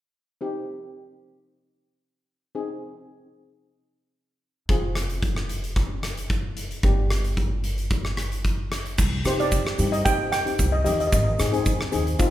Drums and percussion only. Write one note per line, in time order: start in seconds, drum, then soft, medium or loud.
4.69 kick medium
4.69 closed hi-hat soft
4.95 cross-stick medium
4.95 closed hi-hat medium
5.10 closed hi-hat soft
5.22 kick medium
5.22 closed hi-hat medium
5.36 cross-stick medium
5.49 closed hi-hat medium
5.64 closed hi-hat medium
5.76 kick medium
5.76 closed hi-hat soft
6.03 cross-stick medium
6.03 closed hi-hat medium
6.17 closed hi-hat medium
6.30 kick medium
6.30 closed hi-hat medium
6.57 closed hi-hat medium
6.71 closed hi-hat medium
6.83 kick medium
6.83 closed hi-hat medium
7.10 cross-stick medium
7.10 closed hi-hat medium
7.24 closed hi-hat medium
7.37 kick medium
7.37 closed hi-hat medium
7.64 closed hi-hat medium
7.78 closed hi-hat soft
7.90 kick medium
7.90 closed hi-hat medium
8.05 cross-stick medium
8.17 cross-stick medium
8.17 closed hi-hat medium
8.32 closed hi-hat soft
8.45 kick medium
8.45 closed hi-hat medium
8.72 cross-stick medium
8.72 closed hi-hat medium
8.86 closed hi-hat medium
8.98 kick medium
8.98 crash medium
8.98 shaker medium
9.25 cross-stick medium
9.25 closed hi-hat medium
9.25 shaker medium
9.40 closed hi-hat medium
9.52 kick medium
9.52 closed hi-hat medium
9.52 shaker medium
9.67 cross-stick medium
9.79 closed hi-hat medium
9.79 shaker medium
9.93 closed hi-hat medium
10.06 kick loud
10.06 closed hi-hat medium
10.06 shaker medium
10.33 cross-stick medium
10.33 closed hi-hat medium
10.33 shaker medium
10.47 closed hi-hat medium
10.59 kick medium
10.59 closed hi-hat medium
10.59 shaker medium
10.86 closed hi-hat medium
10.86 shaker medium
11.00 closed hi-hat medium
11.12 kick medium
11.12 closed hi-hat medium
11.12 shaker medium
11.39 cross-stick medium
11.39 closed hi-hat medium
11.39 shaker medium
11.54 closed hi-hat medium
11.66 kick medium
11.66 closed hi-hat medium
11.66 shaker medium
11.81 cross-stick medium
11.92 closed hi-hat medium
11.92 shaker medium
12.07 closed hi-hat medium
12.19 kick medium
12.19 closed hi-hat medium
12.19 shaker medium